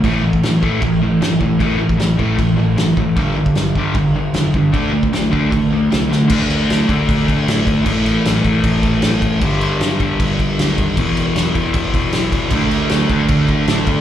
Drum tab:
CC |x---x---x---x---|x---x---x---x---|x---x---x---x---|x---x---x---x---|
SD |----o-------o---|----o-------o---|----o-------o---|----o-------o-o-|
BD |o--o--o-o-----o-|o--o--o-o-----o-|o--o--o-o-----o-|o--o--o-o-------|

CC |x-x-x-x-x-x-x-x-|x-x-x-x-x-x-x-x-|x-x-x-x-x-x-x-x-|x-x-x-x-x-x-x-x-|
SD |----o-------o---|----o-------o---|----o-------o---|----o-------o---|
BD |o-----o-o-o---o-|o-----o-o-o---o-|o-----o-o-o---o-|o-----o-o-o---o-|

CC |x-x-x-x-x-x-x-x-|
SD |----o-------o---|
BD |o-----o-o-o---o-|